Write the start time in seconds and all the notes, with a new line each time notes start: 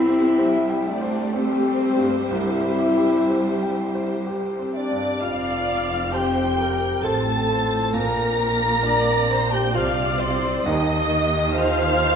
Already playing: C2 G3 C4 E4 G4 C5 E5
0.09 G4
0.39 G3 C5
0.69 G5
0.86 A3 D4 D5
1.01 C5
1.33 C4 G4 C5
1.65 C4
1.98 G2
2.30 C2 G3 E4 E5
2.64 C4
2.97 G4
3.30 C5
3.63 G5
3.95 C5
4.27 G4
4.59 C4
4.73 D4 D5 E5 D6
4.91 G2
5.21 F1 F2 F3 C4 F4 D5 F5 F6
6.12 C4 G4 C5 G5 A5 G6
6.60 A#4
7.03 A1 A2 A4 C5 A5 A6
7.20 A5 C6
7.37 G5 A5
7.50 C5
7.93 A#1 A#2 C4 D4 A#4 A#5 A#6
8.83 D4 D5
9.32 C5
9.50 G4 G5 A5 G6
9.55 G5
9.73 C2 C3 F4 C5 D5 F5 F6
10.19 C4 C5 D5 C6
10.65 D#2 D#3 A#3 D#4 G4 D#5 F5 D#6
10.69 D#5
11.54 D#4 F4 C5 F5 F6